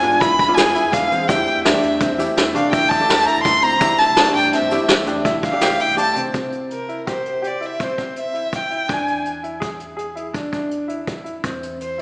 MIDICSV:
0, 0, Header, 1, 6, 480
1, 0, Start_track
1, 0, Tempo, 362319
1, 1714, Time_signature, 7, 2, 24, 8
1, 15920, End_track
2, 0, Start_track
2, 0, Title_t, "Violin"
2, 0, Program_c, 0, 40
2, 0, Note_on_c, 0, 80, 92
2, 270, Note_on_c, 0, 83, 104
2, 290, Note_off_c, 0, 80, 0
2, 723, Note_on_c, 0, 80, 88
2, 743, Note_off_c, 0, 83, 0
2, 1223, Note_on_c, 0, 77, 92
2, 1242, Note_off_c, 0, 80, 0
2, 1692, Note_on_c, 0, 79, 80
2, 1712, Note_off_c, 0, 77, 0
2, 2171, Note_off_c, 0, 79, 0
2, 2179, Note_on_c, 0, 76, 75
2, 2851, Note_off_c, 0, 76, 0
2, 3386, Note_on_c, 0, 77, 79
2, 3599, Note_off_c, 0, 77, 0
2, 3607, Note_on_c, 0, 79, 92
2, 3832, Note_on_c, 0, 81, 100
2, 3852, Note_off_c, 0, 79, 0
2, 4315, Note_on_c, 0, 82, 111
2, 4334, Note_off_c, 0, 81, 0
2, 4543, Note_off_c, 0, 82, 0
2, 4551, Note_on_c, 0, 84, 106
2, 4811, Note_on_c, 0, 82, 112
2, 4831, Note_off_c, 0, 84, 0
2, 5285, Note_on_c, 0, 81, 99
2, 5305, Note_off_c, 0, 82, 0
2, 5769, Note_off_c, 0, 81, 0
2, 5777, Note_on_c, 0, 79, 87
2, 5999, Note_off_c, 0, 79, 0
2, 6027, Note_on_c, 0, 76, 74
2, 6466, Note_off_c, 0, 76, 0
2, 7208, Note_on_c, 0, 77, 85
2, 7692, Note_on_c, 0, 79, 98
2, 7712, Note_off_c, 0, 77, 0
2, 7931, Note_off_c, 0, 79, 0
2, 7949, Note_on_c, 0, 81, 98
2, 8163, Note_off_c, 0, 81, 0
2, 8892, Note_on_c, 0, 70, 62
2, 9339, Note_off_c, 0, 70, 0
2, 9385, Note_on_c, 0, 72, 61
2, 9897, Note_on_c, 0, 74, 59
2, 9917, Note_off_c, 0, 72, 0
2, 10147, Note_on_c, 0, 76, 66
2, 10167, Note_off_c, 0, 74, 0
2, 10380, Note_on_c, 0, 72, 67
2, 10400, Note_off_c, 0, 76, 0
2, 10841, Note_off_c, 0, 72, 0
2, 10862, Note_on_c, 0, 76, 72
2, 11344, Note_on_c, 0, 79, 67
2, 11364, Note_off_c, 0, 76, 0
2, 11823, Note_on_c, 0, 80, 67
2, 11843, Note_off_c, 0, 79, 0
2, 12286, Note_off_c, 0, 80, 0
2, 15657, Note_on_c, 0, 72, 60
2, 15918, Note_off_c, 0, 72, 0
2, 15920, End_track
3, 0, Start_track
3, 0, Title_t, "Grand piano"
3, 0, Program_c, 1, 0
3, 42, Note_on_c, 1, 62, 73
3, 257, Note_off_c, 1, 62, 0
3, 276, Note_on_c, 1, 64, 78
3, 708, Note_off_c, 1, 64, 0
3, 762, Note_on_c, 1, 68, 74
3, 976, Note_off_c, 1, 68, 0
3, 992, Note_on_c, 1, 64, 73
3, 1424, Note_off_c, 1, 64, 0
3, 1482, Note_on_c, 1, 60, 75
3, 1694, Note_off_c, 1, 60, 0
3, 1713, Note_on_c, 1, 64, 90
3, 2143, Note_off_c, 1, 64, 0
3, 2187, Note_on_c, 1, 62, 78
3, 2619, Note_off_c, 1, 62, 0
3, 2663, Note_on_c, 1, 60, 80
3, 2881, Note_off_c, 1, 60, 0
3, 2889, Note_on_c, 1, 64, 80
3, 3327, Note_off_c, 1, 64, 0
3, 3363, Note_on_c, 1, 62, 81
3, 3588, Note_off_c, 1, 62, 0
3, 3603, Note_on_c, 1, 64, 86
3, 4042, Note_off_c, 1, 64, 0
3, 4091, Note_on_c, 1, 67, 74
3, 4311, Note_off_c, 1, 67, 0
3, 4322, Note_on_c, 1, 64, 72
3, 4760, Note_off_c, 1, 64, 0
3, 4798, Note_on_c, 1, 60, 75
3, 5023, Note_off_c, 1, 60, 0
3, 5038, Note_on_c, 1, 64, 95
3, 5476, Note_off_c, 1, 64, 0
3, 5528, Note_on_c, 1, 62, 85
3, 5961, Note_off_c, 1, 62, 0
3, 6014, Note_on_c, 1, 60, 82
3, 6229, Note_off_c, 1, 60, 0
3, 6254, Note_on_c, 1, 64, 85
3, 6683, Note_off_c, 1, 64, 0
3, 6726, Note_on_c, 1, 62, 77
3, 6944, Note_off_c, 1, 62, 0
3, 6964, Note_on_c, 1, 64, 89
3, 7398, Note_off_c, 1, 64, 0
3, 7446, Note_on_c, 1, 67, 82
3, 7664, Note_off_c, 1, 67, 0
3, 7682, Note_on_c, 1, 64, 67
3, 8117, Note_off_c, 1, 64, 0
3, 8155, Note_on_c, 1, 60, 79
3, 8378, Note_off_c, 1, 60, 0
3, 8403, Note_on_c, 1, 60, 54
3, 8838, Note_off_c, 1, 60, 0
3, 9122, Note_on_c, 1, 64, 57
3, 9343, Note_off_c, 1, 64, 0
3, 9362, Note_on_c, 1, 67, 54
3, 9800, Note_off_c, 1, 67, 0
3, 9833, Note_on_c, 1, 67, 59
3, 10059, Note_off_c, 1, 67, 0
3, 10075, Note_on_c, 1, 64, 54
3, 10301, Note_off_c, 1, 64, 0
3, 10338, Note_on_c, 1, 60, 66
3, 10548, Note_off_c, 1, 60, 0
3, 10568, Note_on_c, 1, 60, 60
3, 11006, Note_off_c, 1, 60, 0
3, 11043, Note_on_c, 1, 64, 50
3, 11484, Note_off_c, 1, 64, 0
3, 11531, Note_on_c, 1, 64, 53
3, 11753, Note_off_c, 1, 64, 0
3, 11769, Note_on_c, 1, 62, 66
3, 12209, Note_off_c, 1, 62, 0
3, 12496, Note_on_c, 1, 64, 52
3, 12718, Note_off_c, 1, 64, 0
3, 12720, Note_on_c, 1, 68, 60
3, 13166, Note_off_c, 1, 68, 0
3, 13204, Note_on_c, 1, 68, 62
3, 13433, Note_off_c, 1, 68, 0
3, 13452, Note_on_c, 1, 64, 56
3, 13677, Note_off_c, 1, 64, 0
3, 13691, Note_on_c, 1, 62, 62
3, 13917, Note_off_c, 1, 62, 0
3, 13940, Note_on_c, 1, 62, 58
3, 14379, Note_off_c, 1, 62, 0
3, 14412, Note_on_c, 1, 64, 58
3, 14855, Note_off_c, 1, 64, 0
3, 14893, Note_on_c, 1, 64, 55
3, 15120, Note_off_c, 1, 64, 0
3, 15150, Note_on_c, 1, 60, 64
3, 15585, Note_off_c, 1, 60, 0
3, 15872, Note_on_c, 1, 64, 54
3, 15920, Note_off_c, 1, 64, 0
3, 15920, End_track
4, 0, Start_track
4, 0, Title_t, "Hollow-body jazz guitar"
4, 0, Program_c, 2, 26
4, 24, Note_on_c, 2, 56, 78
4, 32, Note_on_c, 2, 62, 70
4, 34, Note_on_c, 2, 65, 87
4, 36, Note_on_c, 2, 59, 67
4, 494, Note_off_c, 2, 56, 0
4, 495, Note_off_c, 2, 59, 0
4, 495, Note_off_c, 2, 62, 0
4, 497, Note_off_c, 2, 65, 0
4, 638, Note_on_c, 2, 56, 78
4, 643, Note_on_c, 2, 62, 77
4, 644, Note_on_c, 2, 65, 92
4, 646, Note_on_c, 2, 59, 78
4, 1098, Note_off_c, 2, 56, 0
4, 1100, Note_off_c, 2, 59, 0
4, 1100, Note_off_c, 2, 62, 0
4, 1100, Note_off_c, 2, 65, 0
4, 1212, Note_on_c, 2, 56, 65
4, 1221, Note_on_c, 2, 62, 67
4, 1222, Note_on_c, 2, 59, 66
4, 1225, Note_on_c, 2, 68, 82
4, 1591, Note_off_c, 2, 56, 0
4, 1594, Note_off_c, 2, 59, 0
4, 1596, Note_off_c, 2, 62, 0
4, 1598, Note_off_c, 2, 68, 0
4, 1714, Note_on_c, 2, 57, 66
4, 1716, Note_on_c, 2, 52, 76
4, 1720, Note_on_c, 2, 62, 73
4, 1726, Note_on_c, 2, 67, 85
4, 2172, Note_off_c, 2, 57, 0
4, 2174, Note_off_c, 2, 52, 0
4, 2176, Note_off_c, 2, 62, 0
4, 2178, Note_off_c, 2, 67, 0
4, 2295, Note_on_c, 2, 52, 73
4, 2304, Note_on_c, 2, 57, 68
4, 2309, Note_on_c, 2, 62, 65
4, 2311, Note_on_c, 2, 67, 85
4, 2764, Note_off_c, 2, 52, 0
4, 2765, Note_off_c, 2, 57, 0
4, 2765, Note_off_c, 2, 62, 0
4, 2770, Note_off_c, 2, 67, 0
4, 2891, Note_on_c, 2, 52, 77
4, 2901, Note_on_c, 2, 57, 65
4, 2905, Note_on_c, 2, 67, 91
4, 2906, Note_on_c, 2, 62, 65
4, 3269, Note_off_c, 2, 52, 0
4, 3270, Note_off_c, 2, 57, 0
4, 3270, Note_off_c, 2, 62, 0
4, 3274, Note_off_c, 2, 67, 0
4, 3370, Note_on_c, 2, 52, 80
4, 3374, Note_on_c, 2, 57, 71
4, 3376, Note_on_c, 2, 62, 73
4, 3380, Note_on_c, 2, 67, 82
4, 3837, Note_off_c, 2, 57, 0
4, 3838, Note_off_c, 2, 52, 0
4, 3840, Note_off_c, 2, 62, 0
4, 3841, Note_off_c, 2, 67, 0
4, 3968, Note_on_c, 2, 52, 85
4, 3976, Note_on_c, 2, 57, 73
4, 3983, Note_on_c, 2, 62, 82
4, 3987, Note_on_c, 2, 69, 94
4, 4434, Note_off_c, 2, 52, 0
4, 4439, Note_off_c, 2, 57, 0
4, 4442, Note_off_c, 2, 62, 0
4, 4443, Note_off_c, 2, 69, 0
4, 4565, Note_on_c, 2, 52, 69
4, 4566, Note_on_c, 2, 57, 68
4, 4569, Note_on_c, 2, 62, 67
4, 4575, Note_on_c, 2, 64, 82
4, 4939, Note_off_c, 2, 57, 0
4, 4940, Note_off_c, 2, 52, 0
4, 4942, Note_off_c, 2, 62, 0
4, 4944, Note_off_c, 2, 64, 0
4, 5034, Note_on_c, 2, 52, 66
4, 5036, Note_on_c, 2, 57, 64
4, 5039, Note_on_c, 2, 62, 65
4, 5044, Note_on_c, 2, 67, 69
4, 5506, Note_off_c, 2, 57, 0
4, 5506, Note_off_c, 2, 62, 0
4, 5507, Note_off_c, 2, 52, 0
4, 5507, Note_off_c, 2, 67, 0
4, 5628, Note_on_c, 2, 52, 81
4, 5635, Note_on_c, 2, 57, 75
4, 5635, Note_on_c, 2, 62, 72
4, 5635, Note_on_c, 2, 67, 87
4, 6101, Note_off_c, 2, 52, 0
4, 6103, Note_off_c, 2, 67, 0
4, 6104, Note_off_c, 2, 57, 0
4, 6104, Note_off_c, 2, 62, 0
4, 6243, Note_on_c, 2, 52, 72
4, 6246, Note_on_c, 2, 57, 65
4, 6250, Note_on_c, 2, 62, 72
4, 6253, Note_on_c, 2, 67, 79
4, 6616, Note_off_c, 2, 52, 0
4, 6616, Note_off_c, 2, 57, 0
4, 6618, Note_off_c, 2, 62, 0
4, 6621, Note_off_c, 2, 67, 0
4, 6708, Note_on_c, 2, 52, 93
4, 6715, Note_on_c, 2, 57, 81
4, 6715, Note_on_c, 2, 62, 83
4, 6716, Note_on_c, 2, 67, 91
4, 7180, Note_off_c, 2, 62, 0
4, 7181, Note_off_c, 2, 52, 0
4, 7182, Note_off_c, 2, 57, 0
4, 7184, Note_off_c, 2, 67, 0
4, 7307, Note_on_c, 2, 52, 85
4, 7312, Note_on_c, 2, 57, 72
4, 7323, Note_on_c, 2, 62, 82
4, 7329, Note_on_c, 2, 67, 88
4, 7781, Note_off_c, 2, 57, 0
4, 7782, Note_off_c, 2, 52, 0
4, 7783, Note_off_c, 2, 62, 0
4, 7783, Note_off_c, 2, 67, 0
4, 7900, Note_on_c, 2, 52, 70
4, 7906, Note_on_c, 2, 57, 67
4, 7906, Note_on_c, 2, 62, 65
4, 7909, Note_on_c, 2, 67, 75
4, 8284, Note_off_c, 2, 52, 0
4, 8286, Note_off_c, 2, 62, 0
4, 8287, Note_off_c, 2, 67, 0
4, 8288, Note_off_c, 2, 57, 0
4, 15920, End_track
5, 0, Start_track
5, 0, Title_t, "Fingered electric bass"
5, 0, Program_c, 3, 33
5, 43, Note_on_c, 3, 44, 92
5, 346, Note_off_c, 3, 44, 0
5, 415, Note_on_c, 3, 40, 96
5, 611, Note_off_c, 3, 40, 0
5, 769, Note_on_c, 3, 40, 90
5, 967, Note_off_c, 3, 40, 0
5, 1123, Note_on_c, 3, 40, 89
5, 1423, Note_off_c, 3, 40, 0
5, 1477, Note_on_c, 3, 52, 83
5, 1679, Note_off_c, 3, 52, 0
5, 1709, Note_on_c, 3, 40, 103
5, 1913, Note_off_c, 3, 40, 0
5, 2077, Note_on_c, 3, 40, 87
5, 2277, Note_off_c, 3, 40, 0
5, 2431, Note_on_c, 3, 40, 105
5, 2633, Note_off_c, 3, 40, 0
5, 2791, Note_on_c, 3, 40, 88
5, 2992, Note_off_c, 3, 40, 0
5, 3138, Note_on_c, 3, 40, 84
5, 3344, Note_off_c, 3, 40, 0
5, 3375, Note_on_c, 3, 48, 90
5, 3682, Note_off_c, 3, 48, 0
5, 3744, Note_on_c, 3, 40, 98
5, 3946, Note_off_c, 3, 40, 0
5, 4094, Note_on_c, 3, 40, 97
5, 4300, Note_off_c, 3, 40, 0
5, 4454, Note_on_c, 3, 40, 87
5, 4760, Note_off_c, 3, 40, 0
5, 4814, Note_on_c, 3, 37, 90
5, 5018, Note_off_c, 3, 37, 0
5, 5046, Note_on_c, 3, 36, 102
5, 5253, Note_off_c, 3, 36, 0
5, 5414, Note_on_c, 3, 36, 89
5, 5617, Note_off_c, 3, 36, 0
5, 5763, Note_on_c, 3, 43, 95
5, 5970, Note_off_c, 3, 43, 0
5, 6110, Note_on_c, 3, 43, 94
5, 6322, Note_off_c, 3, 43, 0
5, 6464, Note_on_c, 3, 36, 92
5, 6678, Note_off_c, 3, 36, 0
5, 6706, Note_on_c, 3, 40, 89
5, 7020, Note_off_c, 3, 40, 0
5, 7071, Note_on_c, 3, 36, 102
5, 7281, Note_off_c, 3, 36, 0
5, 7427, Note_on_c, 3, 36, 86
5, 7639, Note_off_c, 3, 36, 0
5, 7787, Note_on_c, 3, 36, 92
5, 8101, Note_off_c, 3, 36, 0
5, 8160, Note_on_c, 3, 48, 94
5, 8367, Note_off_c, 3, 48, 0
5, 8397, Note_on_c, 3, 48, 63
5, 11725, Note_off_c, 3, 48, 0
5, 11775, Note_on_c, 3, 40, 54
5, 15100, Note_off_c, 3, 40, 0
5, 15149, Note_on_c, 3, 40, 65
5, 15920, Note_off_c, 3, 40, 0
5, 15920, End_track
6, 0, Start_track
6, 0, Title_t, "Drums"
6, 50, Note_on_c, 9, 42, 55
6, 183, Note_off_c, 9, 42, 0
6, 281, Note_on_c, 9, 36, 97
6, 286, Note_on_c, 9, 38, 30
6, 286, Note_on_c, 9, 42, 75
6, 414, Note_off_c, 9, 36, 0
6, 418, Note_off_c, 9, 38, 0
6, 418, Note_off_c, 9, 42, 0
6, 521, Note_on_c, 9, 36, 81
6, 527, Note_on_c, 9, 42, 58
6, 653, Note_off_c, 9, 36, 0
6, 660, Note_off_c, 9, 42, 0
6, 758, Note_on_c, 9, 82, 57
6, 759, Note_on_c, 9, 38, 106
6, 759, Note_on_c, 9, 42, 71
6, 890, Note_off_c, 9, 82, 0
6, 892, Note_off_c, 9, 38, 0
6, 892, Note_off_c, 9, 42, 0
6, 993, Note_on_c, 9, 42, 68
6, 1125, Note_off_c, 9, 42, 0
6, 1234, Note_on_c, 9, 36, 100
6, 1235, Note_on_c, 9, 42, 75
6, 1366, Note_off_c, 9, 36, 0
6, 1367, Note_off_c, 9, 42, 0
6, 1479, Note_on_c, 9, 42, 58
6, 1484, Note_on_c, 9, 82, 20
6, 1611, Note_off_c, 9, 42, 0
6, 1616, Note_off_c, 9, 82, 0
6, 1708, Note_on_c, 9, 42, 79
6, 1709, Note_on_c, 9, 36, 104
6, 1722, Note_on_c, 9, 82, 61
6, 1840, Note_off_c, 9, 42, 0
6, 1841, Note_off_c, 9, 36, 0
6, 1855, Note_off_c, 9, 82, 0
6, 1954, Note_on_c, 9, 42, 58
6, 2087, Note_off_c, 9, 42, 0
6, 2189, Note_on_c, 9, 38, 119
6, 2189, Note_on_c, 9, 42, 80
6, 2322, Note_off_c, 9, 38, 0
6, 2322, Note_off_c, 9, 42, 0
6, 2425, Note_on_c, 9, 42, 56
6, 2557, Note_off_c, 9, 42, 0
6, 2658, Note_on_c, 9, 42, 78
6, 2659, Note_on_c, 9, 36, 104
6, 2669, Note_on_c, 9, 82, 20
6, 2791, Note_off_c, 9, 36, 0
6, 2791, Note_off_c, 9, 42, 0
6, 2802, Note_off_c, 9, 82, 0
6, 2903, Note_on_c, 9, 38, 35
6, 2903, Note_on_c, 9, 42, 64
6, 2910, Note_on_c, 9, 82, 47
6, 3035, Note_off_c, 9, 38, 0
6, 3035, Note_off_c, 9, 42, 0
6, 3042, Note_off_c, 9, 82, 0
6, 3144, Note_on_c, 9, 38, 102
6, 3144, Note_on_c, 9, 42, 78
6, 3276, Note_off_c, 9, 38, 0
6, 3276, Note_off_c, 9, 42, 0
6, 3382, Note_on_c, 9, 42, 61
6, 3514, Note_off_c, 9, 42, 0
6, 3616, Note_on_c, 9, 42, 81
6, 3617, Note_on_c, 9, 36, 105
6, 3749, Note_off_c, 9, 36, 0
6, 3749, Note_off_c, 9, 42, 0
6, 3857, Note_on_c, 9, 36, 80
6, 3865, Note_on_c, 9, 42, 65
6, 3989, Note_off_c, 9, 36, 0
6, 3998, Note_off_c, 9, 42, 0
6, 4105, Note_on_c, 9, 82, 59
6, 4106, Note_on_c, 9, 38, 106
6, 4106, Note_on_c, 9, 42, 74
6, 4237, Note_off_c, 9, 82, 0
6, 4238, Note_off_c, 9, 38, 0
6, 4238, Note_off_c, 9, 42, 0
6, 4342, Note_on_c, 9, 42, 67
6, 4474, Note_off_c, 9, 42, 0
6, 4571, Note_on_c, 9, 36, 112
6, 4572, Note_on_c, 9, 42, 83
6, 4704, Note_off_c, 9, 36, 0
6, 4705, Note_off_c, 9, 42, 0
6, 4807, Note_on_c, 9, 42, 61
6, 4818, Note_on_c, 9, 82, 21
6, 4940, Note_off_c, 9, 42, 0
6, 4950, Note_off_c, 9, 82, 0
6, 5041, Note_on_c, 9, 42, 86
6, 5047, Note_on_c, 9, 36, 121
6, 5047, Note_on_c, 9, 82, 69
6, 5173, Note_off_c, 9, 42, 0
6, 5179, Note_off_c, 9, 36, 0
6, 5179, Note_off_c, 9, 82, 0
6, 5284, Note_on_c, 9, 38, 36
6, 5284, Note_on_c, 9, 42, 65
6, 5417, Note_off_c, 9, 38, 0
6, 5417, Note_off_c, 9, 42, 0
6, 5517, Note_on_c, 9, 38, 104
6, 5517, Note_on_c, 9, 42, 81
6, 5650, Note_off_c, 9, 38, 0
6, 5650, Note_off_c, 9, 42, 0
6, 5760, Note_on_c, 9, 42, 54
6, 5764, Note_on_c, 9, 82, 17
6, 5893, Note_off_c, 9, 42, 0
6, 5897, Note_off_c, 9, 82, 0
6, 5999, Note_on_c, 9, 38, 31
6, 5999, Note_on_c, 9, 42, 76
6, 6131, Note_off_c, 9, 38, 0
6, 6131, Note_off_c, 9, 42, 0
6, 6235, Note_on_c, 9, 82, 53
6, 6242, Note_on_c, 9, 38, 35
6, 6242, Note_on_c, 9, 42, 59
6, 6368, Note_off_c, 9, 82, 0
6, 6375, Note_off_c, 9, 38, 0
6, 6375, Note_off_c, 9, 42, 0
6, 6470, Note_on_c, 9, 38, 103
6, 6470, Note_on_c, 9, 42, 79
6, 6603, Note_off_c, 9, 38, 0
6, 6603, Note_off_c, 9, 42, 0
6, 6711, Note_on_c, 9, 42, 61
6, 6843, Note_off_c, 9, 42, 0
6, 6956, Note_on_c, 9, 36, 98
6, 6957, Note_on_c, 9, 42, 77
6, 7088, Note_off_c, 9, 36, 0
6, 7090, Note_off_c, 9, 42, 0
6, 7196, Note_on_c, 9, 36, 81
6, 7203, Note_on_c, 9, 42, 65
6, 7329, Note_off_c, 9, 36, 0
6, 7335, Note_off_c, 9, 42, 0
6, 7435, Note_on_c, 9, 38, 103
6, 7435, Note_on_c, 9, 42, 81
6, 7447, Note_on_c, 9, 82, 56
6, 7567, Note_off_c, 9, 38, 0
6, 7567, Note_off_c, 9, 42, 0
6, 7579, Note_off_c, 9, 82, 0
6, 7673, Note_on_c, 9, 42, 64
6, 7694, Note_on_c, 9, 82, 20
6, 7805, Note_off_c, 9, 42, 0
6, 7826, Note_off_c, 9, 82, 0
6, 7916, Note_on_c, 9, 42, 90
6, 8049, Note_off_c, 9, 42, 0
6, 8160, Note_on_c, 9, 42, 67
6, 8175, Note_on_c, 9, 82, 20
6, 8292, Note_off_c, 9, 42, 0
6, 8307, Note_off_c, 9, 82, 0
6, 8397, Note_on_c, 9, 42, 60
6, 8400, Note_on_c, 9, 36, 83
6, 8529, Note_off_c, 9, 42, 0
6, 8533, Note_off_c, 9, 36, 0
6, 8641, Note_on_c, 9, 42, 41
6, 8773, Note_off_c, 9, 42, 0
6, 8883, Note_on_c, 9, 42, 60
6, 9016, Note_off_c, 9, 42, 0
6, 9125, Note_on_c, 9, 42, 37
6, 9258, Note_off_c, 9, 42, 0
6, 9371, Note_on_c, 9, 36, 73
6, 9371, Note_on_c, 9, 42, 56
6, 9504, Note_off_c, 9, 36, 0
6, 9504, Note_off_c, 9, 42, 0
6, 9613, Note_on_c, 9, 42, 46
6, 9745, Note_off_c, 9, 42, 0
6, 9854, Note_on_c, 9, 42, 57
6, 9987, Note_off_c, 9, 42, 0
6, 10097, Note_on_c, 9, 42, 40
6, 10229, Note_off_c, 9, 42, 0
6, 10329, Note_on_c, 9, 42, 58
6, 10334, Note_on_c, 9, 36, 73
6, 10462, Note_off_c, 9, 42, 0
6, 10467, Note_off_c, 9, 36, 0
6, 10573, Note_on_c, 9, 42, 44
6, 10575, Note_on_c, 9, 36, 59
6, 10706, Note_off_c, 9, 42, 0
6, 10707, Note_off_c, 9, 36, 0
6, 10810, Note_on_c, 9, 42, 62
6, 10943, Note_off_c, 9, 42, 0
6, 11057, Note_on_c, 9, 42, 45
6, 11190, Note_off_c, 9, 42, 0
6, 11298, Note_on_c, 9, 36, 73
6, 11299, Note_on_c, 9, 42, 59
6, 11431, Note_off_c, 9, 36, 0
6, 11431, Note_off_c, 9, 42, 0
6, 11541, Note_on_c, 9, 42, 47
6, 11673, Note_off_c, 9, 42, 0
6, 11781, Note_on_c, 9, 36, 83
6, 11783, Note_on_c, 9, 42, 67
6, 11913, Note_off_c, 9, 36, 0
6, 11916, Note_off_c, 9, 42, 0
6, 12025, Note_on_c, 9, 42, 46
6, 12158, Note_off_c, 9, 42, 0
6, 12258, Note_on_c, 9, 42, 60
6, 12390, Note_off_c, 9, 42, 0
6, 12502, Note_on_c, 9, 42, 41
6, 12634, Note_off_c, 9, 42, 0
6, 12741, Note_on_c, 9, 42, 57
6, 12742, Note_on_c, 9, 36, 78
6, 12873, Note_off_c, 9, 42, 0
6, 12874, Note_off_c, 9, 36, 0
6, 12978, Note_on_c, 9, 42, 45
6, 13111, Note_off_c, 9, 42, 0
6, 13227, Note_on_c, 9, 42, 59
6, 13360, Note_off_c, 9, 42, 0
6, 13465, Note_on_c, 9, 42, 46
6, 13598, Note_off_c, 9, 42, 0
6, 13704, Note_on_c, 9, 42, 52
6, 13705, Note_on_c, 9, 36, 66
6, 13836, Note_off_c, 9, 42, 0
6, 13837, Note_off_c, 9, 36, 0
6, 13946, Note_on_c, 9, 36, 60
6, 13949, Note_on_c, 9, 42, 46
6, 14079, Note_off_c, 9, 36, 0
6, 14081, Note_off_c, 9, 42, 0
6, 14187, Note_on_c, 9, 42, 54
6, 14319, Note_off_c, 9, 42, 0
6, 14428, Note_on_c, 9, 42, 49
6, 14561, Note_off_c, 9, 42, 0
6, 14671, Note_on_c, 9, 36, 80
6, 14671, Note_on_c, 9, 42, 57
6, 14804, Note_off_c, 9, 36, 0
6, 14804, Note_off_c, 9, 42, 0
6, 14913, Note_on_c, 9, 42, 46
6, 15046, Note_off_c, 9, 42, 0
6, 15153, Note_on_c, 9, 42, 59
6, 15154, Note_on_c, 9, 36, 89
6, 15286, Note_off_c, 9, 36, 0
6, 15286, Note_off_c, 9, 42, 0
6, 15403, Note_on_c, 9, 42, 49
6, 15535, Note_off_c, 9, 42, 0
6, 15639, Note_on_c, 9, 42, 64
6, 15771, Note_off_c, 9, 42, 0
6, 15920, End_track
0, 0, End_of_file